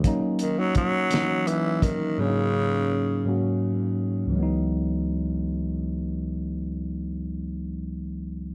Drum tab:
HH |xxxxxx|------|------|------|
SD |---o--|------|------|------|
BD |o-o--o|------|------|------|